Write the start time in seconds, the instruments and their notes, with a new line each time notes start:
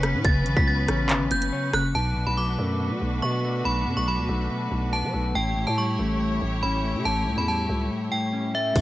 Already playing: 808-style bass F#1, clean electric guitar C#3 C#5, string section F#3 B3 C#4 B4, synth bell B6
0.03 clean electric guitar C#4, cross-stick, closed hi-hat
0.14 808-style bass A2
0.25 808-style bass F#1, clean electric guitar C#3, synth bell A6, kick, closed hi-hat
0.46 808-style bass A1, clean electric guitar C#3, closed hi-hat
0.57 808-style bass C#2, synth bell B6, kick
0.67 clean electric guitar B3, synth bell A6
0.88 808-style bass A1, clean electric guitar C#4, cross-stick, closed hi-hat
1.09 808-style bass G1, clean electric guitar C#3, clap, closed hi-hat
1.20 808-style bass A1
1.31 808-style bass F#1, clean electric guitar C#3, synth bell G6, closed hi-hat
1.42 closed hi-hat
1.53 clean electric guitar C#5
1.73 808-style bass F#1, clean electric guitar C#4, synth bell F#6, cross-stick, closed hi-hat
1.95 808-style bass B1, clean electric guitar B2, string section A3 D4 F#4 B4, synth bell A5
2.17 clean electric guitar B2
2.27 808-style bass B1, synth bell B5
2.37 clean electric guitar F#3, synth bell D6
2.58 808-style bass F#2, clean electric guitar A3
2.80 clean electric guitar B2
2.91 808-style bass B2
3.01 808-style bass B1, clean electric guitar B2
3.22 808-style bass B2, clean electric guitar B3, synth bell C#6
3.44 clean electric guitar A3
3.65 808-style bass B1, clean electric guitar B2, synth bell B5
3.86 808-style bass F#2, clean electric guitar B2
3.97 808-style bass B1, synth bell C#6
4.08 clean electric guitar F#3, synth bell B5
4.18 808-style bass D2
4.29 808-style bass B1, clean electric guitar A3
4.51 clean electric guitar B2
4.71 808-style bass B1, clean electric guitar B2
4.93 clean electric guitar B3, synth bell A5
5.03 808-style bass F#3
5.13 808-style bass B1, clean electric guitar A3
5.35 808-style bass A1, clean electric guitar A2, string section A3 E4 G4 C#5, synth bell G5
5.56 clean electric guitar A2
5.67 808-style bass A2, synth bell A5
5.78 clean electric guitar G3, synth bell C#6
5.99 808-style bass A1, clean electric guitar A3
6.21 clean electric guitar A2
6.42 808-style bass A1, clean electric guitar A2
6.63 808-style bass A1, clean electric guitar C#4, synth bell B5
6.84 clean electric guitar A3
6.95 808-style bass C#3
7.05 808-style bass A1, clean electric guitar A2, synth bell A5
7.27 808-style bass C#2, clean electric guitar A2
7.37 808-style bass E2, synth bell B5
7.48 clean electric guitar G3, synth bell A5
7.69 808-style bass C#2, clean electric guitar A3
7.90 clean electric guitar A2
8.12 clean electric guitar A2, synth bell G5
8.33 clean electric guitar C#4
8.54 clean electric guitar A3, synth bell E5
8.76 808-style bass B1, clean electric guitar B2, kick, closed hi-hat, crash, impact